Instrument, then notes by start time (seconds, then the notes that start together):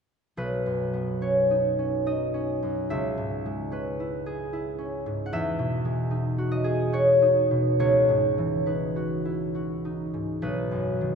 harp
0.37 B1 B4
0.66 F#2
0.94 B3
1.21 C#4 C#5
1.51 D#4
1.79 C#4
2.06 D#4 D#5
2.34 C#4
2.63 F#2
2.90 C#2 E5
3.18 G#2
3.46 G#3
3.71 C#4 B4
4.00 E4
4.26 G#4
4.53 E4
4.79 C#4
5.06 G#2
5.26 F#5
5.33 E2 E5
5.59 B2
5.85 G#3
6.11 D#4
6.38 F#4
6.51 D#5
6.64 G#4
6.92 F#4 C#5
7.22 D#4
7.51 B2
7.79 C#2 C#5
8.09 G#2
8.38 E3
8.66 D#4 B4
8.96 F#4
9.25 E4
9.55 F#4
9.85 D#4
10.14 G#2
10.42 B1 B4
10.71 F#2
11.01 D#3